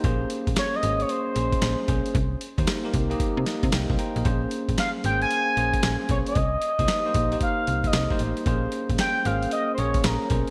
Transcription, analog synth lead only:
X:1
M:4/4
L:1/16
Q:"Swing 16ths" 1/4=114
K:Bbdor
V:1 name="Analog synth lead"
z4 d e2 d c6 z2 | z16 | z4 f2 g a6 z d e- | e8 f3 e3 z2 |
z4 g2 f2 e3/2 c/2 d2 B3 z |]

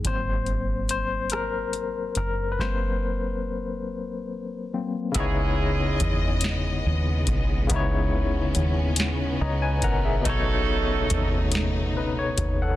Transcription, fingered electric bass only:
X:1
M:6/8
L:1/8
Q:3/8=47
K:G#phr
V:1 name="Fingered electric bass" clef=bass
G,,,4- G,,, F,,, | z6 | [K:C#m] C,,2 E,,2 D,, B,,, | C,,2 D,,2 C,, ^A,,, |
B,,,2 D,,2 C,, D,, |]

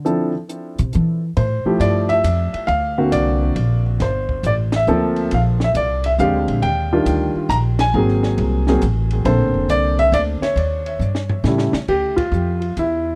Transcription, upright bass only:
X:1
M:3/4
L:1/16
Q:"Swing" 1/4=137
K:Dm
V:1 name="Upright bass" clef=bass
D,2 z4 C,2 E,3 z | [K:F] A,,2 z2 G,,4 F,,2 z2 | D,,4 C,,4 ^A,,,4 | G,,,4 A,,,4 D,,4 |
B,,,4 C,,4 (3F,,2 D,,2 B,,,2 | _E,,4 D,,2 z2 B,,,4 | _A,,,4 C,,4 =A,,,4 | (3B,,,2 A,,,2 F,,,2 C,,4 D,,2 z2 |
_E,,4 G,,4 A,,2 z2 | [K:Dm] D,,4 F,,4 E,,4 |]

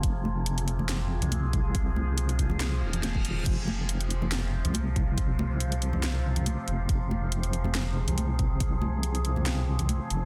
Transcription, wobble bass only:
X:1
M:4/4
L:1/16
Q:"Swing 16ths" 1/4=140
K:Fm
V:1 name="Wobble bass" clef=bass
F,,,8- F,,,3 C,,4- C,,- | C,,8- C,,2 E,,,6 | F,,,8- F,,,3 C,,4- C,,- | C,,12- C,, z F,,,2 |
F,,,8- F,,,3 C,,4- C,,- | C,,12- C,, z F,,,2 |]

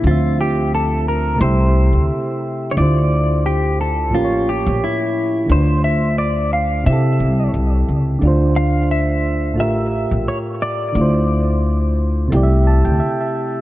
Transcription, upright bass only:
X:1
M:4/4
L:1/16
Q:"Swing 16ths" 1/4=88
K:Dm
V:1 name="Upright bass" clef=bass
D,,8 C,,3 D,, z4 | D,,8 A,,,3 B,,, z4 | D,,8 C,2 C,,2 C,,2 ^C,,2 | D,,8 A,,,3 B,,, z4 |
D,,8 C,,3 D,, z4 |]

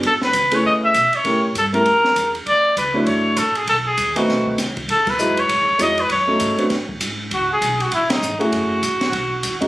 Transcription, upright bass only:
X:1
M:4/4
L:1/8
Q:"Swing" 1/4=198
K:C#m
V:1 name="Upright bass" clef=bass
A,,,2 C,,2 E,,2 B,, z | A,,2 =G,,2 ^E,,2 =E,,2 | =D,,2 C,,2 F,,,2 A,,,2 | B,,,2 D,,2 B,,,2 =C,,2 |
E,,2 F,,2 (3G,, E,, D,, ^E,,2 | F,,2 G,,2 A,,2 G,,2 | C,,2 B,,,2 A,,,2 G,,,2 | F,,,2 A,,,2 B,,,2 D,,2 |]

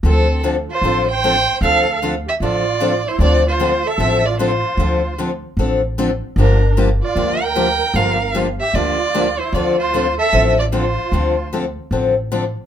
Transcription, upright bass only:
X:1
M:4/4
L:1/8
Q:"Swing" 1/4=152
K:Dm
V:1 name="Upright bass" clef=bass
D,,4 A,,,4 | D,,4 A,,,4 | D,,4 A,,,4 | D,,4 A,,,4 |
G,,,4 D,,4 | G,,,4 D,,4 | D,,4 A,,,4 | D,,4 A,,,4 |]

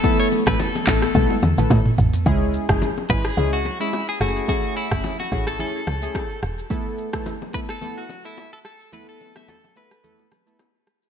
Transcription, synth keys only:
X:1
M:4/4
L:1/16
Q:"Swing 16ths" 1/4=108
K:A
V:1 name="Synth keys"
[A,B,EA]3 [A,B,EA] z2 [A,B,EA]2 [A,B,EA]2 z [A,B,EA] z4 | [G,CEG]3 [G,CEG] z2 [G,CEG]2 [G,CEG]2 z [G,CEG] z2 [A,CEG]2 | [A,CEG]3 [A,CEG] z2 [A,CEG]2 [A,CEG]2 z [A,CEG] z4 | [A,B,EA]3 [A,B,EA] z2 [A,B,EA]2 [A,B,EA]2 z [A,B,EA] z4 |
[A,B,EA]3 [A,B,EA] z2 [A,B,EA]2 [A,B,EA]2 z [A,B,EA] z4 |]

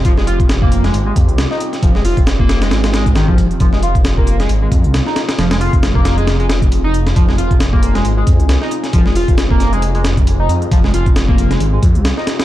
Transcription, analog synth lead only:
X:1
M:4/4
L:1/16
Q:"Swing 16ths" 1/4=135
K:Fm
V:1 name="Analog synth lead" clef=bass
F, A, F z2 B,2 A, z A, z3 E z2 | F, A, F z2 B,2 A, z A, A, z E, F, z2 | F, A, F z2 B,2 A, z A, z3 E z2 | F, A, F z2 B,2 A, z A, z3 E z2 |
F, A, F z2 B,2 A, z A, z3 E z2 | F, A, F z2 B,2 A, z A, z3 E z2 | F, A, F z2 B,2 A, z A, z3 E z2 |]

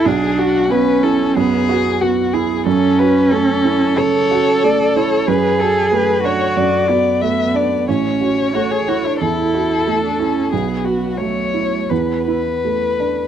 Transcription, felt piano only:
X:1
M:4/4
L:1/8
Q:1/4=92
K:A
V:1 name="Felt piano"
B,,, F B, E F,, F B, E | F,, F A, E C, F A, E | F,, F A, D F,, F A, D | A,,, F A, E E,, F A, E |
B,,, F F, E E,, E A, D |]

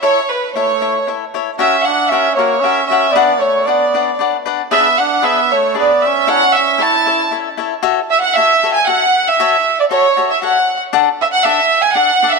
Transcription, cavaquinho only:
X:1
M:3/4
L:1/8
Q:1/4=116
K:A
V:1 name="Cavaquinho"
[EAce] z [EAce] [EAce] [EAce] [EAce] | [F^Acf] z [FAcf] [FAcf] [FAcf] [FAcf] | [DBdf] z [DBdf] [DBdf] [DBdf] [DBdf] | [DGBe] z [DGBe] z [DGBe] z |
[EAce] z [EAce] [EAce] [EAce] [EAce] | [K:F#m] [FAce] z [FAce] [FAce] [FAce] z | [FAce] z [FAce] [FAce] [FAce] z | [DAdf] z [DAdf] z [DAdf] [DAdf] |]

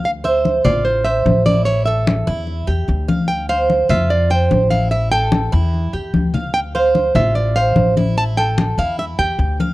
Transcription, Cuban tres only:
X:1
M:4/4
L:1/8
Q:1/4=148
K:Dm
V:1 name="Cuban tres"
z c2 F2 c2 E | E A2 E2 G2 f- | f c2 F2 c2 E | E A2 E2 G2 f- |
f c2 F2 c2 E | E A2 E2 G2 f |]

